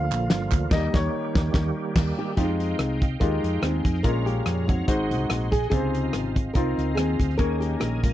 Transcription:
Already playing: tonewheel organ D3 F3 A#3 F4, grand piano F5
0.11 fingered electric bass A#1, clap, closed hi-hat
0.30 fingered electric bass G1, snare, closed hi-hat
0.52 fingered electric bass D2, kick, clap, closed hi-hat
0.70 fingered electric bass D#2, tonewheel organ D#3 G3 G4, grand piano G3 A#3 D#4 D#5, kick, snare, crash
0.94 fingered electric bass D#2, grand piano C#5, kick, snare
1.35 fingered electric bass D#2, kick, snare
1.54 fingered electric bass D#2, kick, snare
1.96 fingered electric bass D#2, kick, snare, crash
2.19 nylon-string guitar G4
2.37 fingered electric bass F2, nylon-string guitar C4 D#4 G4, grand piano D#4 F4 G4, tonewheel organ D#5 F5 G5, kick, closed hi-hat
2.43 grand piano G#3
2.60 closed hi-hat
2.79 fingered electric bass C2, cross-stick, closed hi-hat
3.02 kick, closed hi-hat
3.20 fingered electric bass D#2, grand piano G#3 D#4 F4 G4, nylon-string guitar D#4 G4 A#4, kick, cross-stick, closed hi-hat
3.43 fingered electric bass F2, closed hi-hat
3.62 fingered electric bass D#2, nylon-string guitar C4 D#4 G#4, cross-stick, closed hi-hat
3.85 fingered electric bass F2, kick, closed hi-hat
3.95 cross-stick
4.03 fingered electric bass A#1, grand piano A#2 G#3 C#4 F4 A#4, tonewheel organ G#3 C#5 A#5, nylon-string guitar C#4 F4 A#4, kick, closed hi-hat
4.26 nylon-string guitar C#4 G4, closed hi-hat
4.46 fingered electric bass F2, cross-stick, closed hi-hat
4.68 nylon-string guitar C4 D#4 F#4, kick, closed hi-hat
4.88 fingered electric bass G#1, grand piano G#2 G#3 D#4 F#4 C5, tonewheel organ G#4 D#5 F#5 C6, kick, cross-stick, closed hi-hat
5.11 fingered electric bass C2, closed hi-hat
5.29 fingered electric bass A#1, cross-stick, closed hi-hat
5.52 nylon-string guitar G#4, kick, closed hi-hat
5.63 cross-stick
5.70 fingered electric bass C#2, grand piano C3 C#3 D#4 F4 C5, nylon-string guitar C4 F4 G#4, tonewheel organ C4 F5, kick, closed hi-hat
5.77 grand piano C5
5.95 closed hi-hat
6.13 fingered electric bass G#1, cross-stick, closed hi-hat
6.36 kick, closed hi-hat
6.54 fingered electric bass C2, grand piano C4 D#4 F4 A#4, nylon-string guitar D#4 F4 A#4, kick, cross-stick, closed hi-hat
6.78 fingered electric bass C#2, closed hi-hat
6.95 fingered electric bass D#2, nylon-string guitar C4 F4 G#4, cross-stick, closed hi-hat
7.20 fingered electric bass D2, kick, closed hi-hat
7.30 cross-stick
7.38 fingered electric bass D#2, grand piano D#3 A#3 D#4 G#4 C#5, nylon-string guitar C#4 A#4, tonewheel organ A#4 G#5, kick, closed hi-hat
7.61 nylon-string guitar G4, closed hi-hat
7.80 fingered electric bass A#1, nylon-string guitar G4, cross-stick, closed hi-hat
8.03 nylon-string guitar A#3 C#4 F4, kick, closed hi-hat

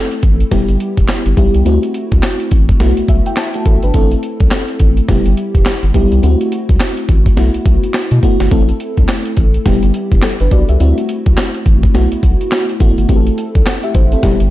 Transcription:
Already playing: fm electric piano A3 C4 E4 A4
0.11 closed hi-hat
0.23 analog synth bass A1, kick, closed hi-hat
0.40 closed hi-hat
0.51 analog synth bass E1, fm electric piano G3 B3 E4 G4, kick, snare, closed hi-hat
0.68 analog synth bass G1, closed hi-hat
0.80 closed hi-hat
0.97 analog synth bass E1, kick, closed hi-hat
1.08 snare, clap, closed hi-hat
1.26 analog synth bass G1, closed hi-hat
1.37 analog synth bass B1, fm electric piano G3 B3 E4 G4, kick, closed hi-hat
1.54 analog synth bass C2, closed hi-hat
1.65 analog synth bass D2, fm electric piano A3 C4 E4 F#4, closed hi-hat
1.83 closed hi-hat
1.94 closed hi-hat
2.12 analog synth bass C2, kick, closed hi-hat
2.23 snare, clap, closed hi-hat
2.40 closed hi-hat
2.51 analog synth bass A1, kick, closed hi-hat
2.69 kick, closed hi-hat
2.80 analog synth bass B1, fm electric piano A3 B3 E4 F#4, snare, closed hi-hat
2.97 analog synth bass B1, closed hi-hat
3.08 analog synth bass B1, fm electric piano E5, kick, closed hi-hat
3.26 fm electric piano G5, closed hi-hat
3.37 fm electric piano A5, snare, clap, closed hi-hat
3.54 fm electric piano A3 F#4, closed hi-hat
3.65 analog synth bass A1, fm electric piano A4, kick, closed hi-hat
3.83 analog synth bass G1, fm electric piano D4 B4, closed hi-hat
3.94 analog synth bass A1, fm electric piano A3 C4 E4 A4, kick, closed hi-hat
4.11 closed hi-hat
4.23 closed hi-hat
4.40 analog synth bass B1, kick, closed hi-hat
4.51 snare, clap, closed hi-hat
4.68 closed hi-hat
4.79 analog synth bass A1, kick, closed hi-hat
4.97 closed hi-hat
5.08 analog synth bass E1, fm electric piano G3 B3 E4 G4, kick, snare, closed hi-hat
5.26 analog synth bass G1, closed hi-hat
5.37 closed hi-hat
5.55 analog synth bass E1, kick, closed hi-hat
5.66 snare, clap, closed hi-hat
5.83 analog synth bass G1, closed hi-hat
5.94 analog synth bass B1, fm electric piano G3 B3 E4 G4, kick, closed hi-hat
6.12 analog synth bass C2, closed hi-hat
6.23 analog synth bass D2, fm electric piano A3 C4 E4 F#4, closed hi-hat
6.41 closed hi-hat
6.52 closed hi-hat
6.69 analog synth bass C2, kick, closed hi-hat
6.80 snare, clap, closed hi-hat
6.97 closed hi-hat
7.09 analog synth bass A1, kick, closed hi-hat
7.26 kick, closed hi-hat
7.37 analog synth bass B1, fm electric piano A3 B3 E4 F#4, snare, closed hi-hat
7.54 analog synth bass B1, closed hi-hat
7.66 analog synth bass B1, kick, closed hi-hat
7.83 closed hi-hat
7.94 snare, clap, closed hi-hat
8.11 analog synth bass B2, closed hi-hat
8.23 fm electric piano A3 B3 E4 F#4, kick, closed hi-hat
8.40 analog synth bass G1, snare, closed hi-hat
8.51 analog synth bass A1, fm electric piano A3 C4 E4 A4, kick, closed hi-hat
8.69 closed hi-hat
8.80 closed hi-hat
8.97 analog synth bass B1, kick, closed hi-hat
9.08 snare, clap, closed hi-hat
9.25 closed hi-hat
9.37 analog synth bass A1, kick, closed hi-hat
9.54 closed hi-hat
9.65 analog synth bass E1, fm electric piano G3 B3 E4 G4, kick, snare, closed hi-hat
9.83 analog synth bass G1, closed hi-hat
9.94 closed hi-hat
10.12 analog synth bass E1, kick, closed hi-hat
10.22 fm electric piano A4, snare, clap, closed hi-hat
10.40 analog synth bass G1, fm electric piano D4 B4, closed hi-hat
10.51 analog synth bass B1, fm electric piano F#4 D5, kick, closed hi-hat
10.69 analog synth bass C2, fm electric piano G4 E5, closed hi-hat
10.80 analog synth bass D2, fm electric piano A3 C4 E4 F#4, closed hi-hat
10.98 closed hi-hat
11.09 closed hi-hat
11.26 analog synth bass C2, kick, closed hi-hat
11.37 snare, clap, closed hi-hat
11.54 closed hi-hat
11.66 analog synth bass A1, kick, closed hi-hat
11.83 kick, closed hi-hat
11.94 analog synth bass B1, fm electric piano A3 B3 E4 F#4, snare, closed hi-hat
12.12 analog synth bass B1, closed hi-hat
12.23 analog synth bass B1, kick, closed hi-hat
12.41 closed hi-hat
12.52 snare, clap, closed hi-hat
12.69 closed hi-hat
12.80 analog synth bass A1, fm electric piano A3 B3 E4 F#4, kick, closed hi-hat
12.97 analog synth bass G1, closed hi-hat
13.08 analog synth bass A1, fm electric piano A3 C4 E4 G4, kick, closed hi-hat
13.16 fm electric piano A4
13.27 closed hi-hat
13.38 closed hi-hat
13.55 analog synth bass B1, kick, closed hi-hat
13.66 fm electric piano A4 F#5, snare, clap, closed hi-hat
13.83 fm electric piano G4 E5, closed hi-hat
13.95 analog synth bass A1, fm electric piano E4 C5, kick, closed hi-hat
14.12 fm electric piano C4 A4, closed hi-hat
14.23 analog synth bass E1, fm electric piano G3 B3 E4 G4, kick, snare, closed hi-hat
14.40 analog synth bass G1, closed hi-hat

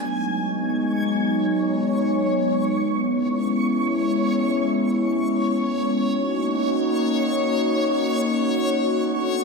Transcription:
0.05 analog synth pad F#3 G#3 B3 D#4, synth texture C#5 C#6
3.05 analog synth pad G#3 C#4 E4
6.05 analog synth pad A#3 D#4 F#4
9.05 analog synth pad B3 D4 A4

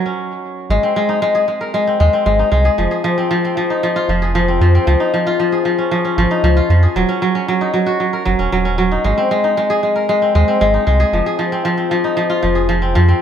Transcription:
Already playing: kora F#3 D#4 F#4 A#4
0.06 kora C#4
0.70 sub bass G#1, kora G#3
0.83 kora C4
0.96 kora G#3
1.09 kora D#4
1.22 kora G#3
1.35 kora G#4
1.48 kora G#3
1.61 kora A#4
1.74 kora G#3
1.87 kora C4
2.00 sub bass D#2, kora G#3
2.13 kora C4
2.26 sub bass G#1, kora G#3
2.39 kora D#4
2.52 sub bass C2, kora G#3
2.65 kora G#4
2.78 sub bass F1, kora F3
2.91 kora G#4
3.04 kora F3
3.18 kora C4
3.31 kora F3
3.45 kora C4
3.57 kora F3
3.70 kora D#4
3.83 kora F3
3.96 kora F4
4.09 sub bass F1, kora F3
4.22 kora G#4
4.35 kora F3
4.48 kora C4
4.61 sub bass F2, kora F3
4.75 kora C4
4.87 sub bass C#2, kora F3
5.00 kora D#4
5.14 kora F3
5.27 kora F4
5.40 kora F3
5.52 kora G#4
5.65 kora F3
5.78 kora C#4
5.91 kora F3
6.05 kora C#4
6.18 sub bass G#1, kora F3
6.31 kora D#4
6.43 sub bass C#2, kora F3
6.57 kora F4
6.70 sub bass F2, kora F3
6.83 kora G#4
6.96 sub bass D#1, kora F#3
7.09 kora C#4
7.22 kora F#3
7.35 kora C#4
7.48 kora F#3
7.61 kora D#4
7.74 kora F#3
7.86 kora F#4
8.00 kora F#3
8.13 kora A#4
8.25 sub bass F#1, kora F#3
8.39 sub bass D#1, kora C#4
8.52 sub bass D#1, kora F#3
8.65 kora C#4
8.78 kora F#3
8.92 kora D#4
9.04 sub bass G#1, kora G#3
9.18 kora C4
9.31 kora G#3
9.44 kora D#4
9.57 kora G#3
9.70 kora G#4
9.83 kora G#3
9.96 kora A#4
10.09 kora G#3
10.22 kora C4
10.35 sub bass D#2, kora G#3
10.48 kora C4
10.61 sub bass G#1, kora G#3
10.74 kora D#4
10.87 sub bass C2, kora G#3
11.00 kora G#4
11.13 sub bass F1, kora F3
11.26 kora G#4
11.39 kora F3
11.52 kora C4
11.65 kora F3
11.78 kora C4
11.91 kora F3
12.04 kora D#4
12.17 kora F3
12.30 kora F4
12.43 sub bass F1, kora F3
12.55 kora G#4
12.69 kora F3
12.82 kora C4
12.95 sub bass F2, kora F3
13.08 kora C4

